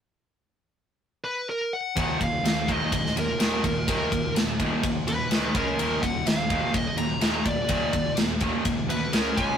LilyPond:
<<
  \new Staff \with { instrumentName = "Lead electric guitar" } { \time 4/4 \key des \mixolydian \tempo 4 = 126 r2 r8 ces''8 bes'8 ges''8~ | ges''8 f''4 ees''4 bes'4. | bes'4 r4. ces''4 bes'8~ | bes'8 ges''8 f''4 ees''8 bes''4 d''8~ |
d''4 r4. ces''8 bes'8 aes''8 | }
  \new Staff \with { instrumentName = "Distorted electric guitar" } { \clef bass \time 4/4 \key des \mixolydian r1 | <ees, bes, ees>8 <ees, bes,>8 <ees, bes,>8 <ees, bes, ees>8 <ees, bes,>8 <ees, bes,>8 <ees, bes, ees>8 <ees, bes,>8 | <ees, bes, ees>8 <ees, bes,>8 <ees, bes,>8 <ees, bes, ees>8 <ees, bes,>8 <ees, bes,>8 <ees, bes, ees>8 <des aes des'>8 | <ees, bes, ees>8 <ees, bes,>8 <ees, bes,>8 <ees, bes, ees>8 <ees, bes,>8 <ees, bes,>8 <ees, bes, ees>8 <ees, bes,>8 |
<ees, bes, ees>8 <ees, bes,>8 <ees, bes,>8 <ees, bes, ees>8 <ees, bes,>8 <ees, bes,>8 <des aes des'>8 <des aes des'>8 | }
  \new Staff \with { instrumentName = "Distorted electric guitar" } { \clef bass \time 4/4 \key des \mixolydian r1 | <ees, bes, ees>8 <ees, bes,>8 <ees, bes,>8 <ees, bes, ees>8 <ees, bes,>8 <ees, bes,>8 <ees, bes, ees>8 <ees, bes,>8 | <ees, bes, ees>8 <ees, bes,>8 <ees, bes,>8 <ees, bes, ees>8 <ees, bes,>8 <ees, bes,>8 <ees, bes, ees>8 <des aes des'>8 | <ees, bes, ees>8 <ees, bes,>8 <ees, bes,>8 <ees, bes, ees>8 <ees, bes,>8 <ees, bes,>8 <ees, bes, ees>8 <ees, bes,>8 |
<ees, bes, ees>8 <ees, bes,>8 <ees, bes,>8 <ees, bes, ees>8 <ees, bes,>8 <ees, bes,>8 <des aes des'>8 <des aes des'>8 | }
  \new Staff \with { instrumentName = "Picked electric bass" } { \clef bass \time 4/4 \key des \mixolydian r1 | ees,,8 ees,,8 ees,,4 aes,,8 ees,,8 ees,,8 ees,,8 | ees,,8 ees,,8 ees,,4 aes,,8 ees,,8 d,8 des,8 | ees,,8 ees,,8 ees,,4 aes,,8 ees,,8 ees,,8 ees,,8 |
ees,,8 ees,,8 ees,,4 aes,,8 d,8 des,8 des,8 | }
  \new DrumStaff \with { instrumentName = "Drums" } \drummode { \time 4/4 r4 r4 r4 r4 | <bd cymr>8 <bd cymr>8 <cymr sn>8 <bd cymr>8 <bd cymr>16 sn16 cymr8 <cymr sn>8 <bd cymr>8 | <bd cymr>8 <bd cymr>8 <cymr sn>8 <bd cymr>8 <bd cymr>8 cymr8 <cymr sn>8 <bd cymr>8 | cymr8 <bd cymr>8 <cymr sn>8 <bd cymr>8 <bd cymr>8 cymr8 <cymr sn>8 <bd cymr>8 |
<bd cymr>8 <bd cymr>8 <cymr sn>8 <bd cymr>8 <bd cymr>8 cymr8 <cymr sn>8 <bd cymr>8 | }
>>